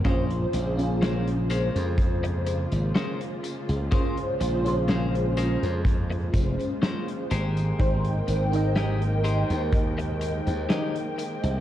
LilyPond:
<<
  \new Staff \with { instrumentName = "Clean electric guitar" } { \time 4/4 \key bes \dorian \tempo 4 = 62 <des' aes' bes' c''>16 r8. <des' aes' bes' c''>16 r16 <des' aes' bes' c''>8 r4 <des' aes' bes' c''>16 r8. | <des' aes' bes' c''>16 r8. <des' aes' bes' c''>16 r16 <des' aes' bes' c''>8 r4 <des' aes' bes' c''>16 r16 <g' aes' bes' c''>8~ | <g' aes' bes' c''>8 r8 <g' aes' bes' ees''>16 r16 <g' aes' bes' c''>8 r4 <g' aes' bes' ees''>16 r8. | }
  \new Staff \with { instrumentName = "FM electric piano" } { \time 4/4 \key bes \dorian <des' f' aes' c''>8. <des' f' aes'>2.~ <des' f' aes'>16 | <des' f' aes' c''>8. <des' f' aes' c''>2~ <des' f' aes' c''>8. r8 | <ees' bes' c'' g''>8. <ees' bes' ees'' g''>2.~ <ees' bes' ees'' g''>16 | }
  \new Staff \with { instrumentName = "String section" } { \time 4/4 \key bes \dorian << { <des bes f'>1~ | <des bes f'>2.~ <des bes f'>8 <ees bes g''>8~ | <ees bes g''>1 | } \\ { aes1~ | aes1~ | aes1 | } >> }
  \new Staff \with { instrumentName = "Slap bass" } { \clef bass \time 4/4 \key bes \dorian bes,,8 bes,,4~ bes,,16 f,4 aes,,16 r8. des,16 | r8 bes,,4~ bes,,16 f,8. f,,16 r8. aes,,8 | aes,,8 aes,,4~ aes,,16 ees,4 ees,16 r8. c,16 | }
  \new DrumStaff \with { instrumentName = "Drums" } \drummode { \time 4/4 <hh bd tamb>16 hh16 <hh tamb>16 <hh tamb>16 <hh sn tamb>16 hh16 <hh tamb>16 <hh tamb>16 <hh bd tamb>16 hh16 <hh tamb>16 <hh tamb>16 <hh sn tamb>16 hh16 <hh tamb>16 <hh tamb>16 | <hh bd tamb>16 hh16 <hh tamb>16 <hh tamb>16 <hh sn tamb>16 hh16 <hh tamb>16 <hh tamb>16 <hh bd tamb>16 hh16 <hh bd tamb>16 <hh tamb>16 <hh sn tamb>16 hh16 <hh tamb>16 <hh tamb>16 | <hh bd tamb>16 hh16 <hh tamb>16 <hh tamb>16 <hh sn tamb>16 hh16 <hh tamb>16 <hh tamb>16 <hh bd tamb>16 hh16 <hh tamb>16 <hh tamb>16 <hh sn tamb>16 hh16 <hh tamb>16 <hh tamb>16 | }
>>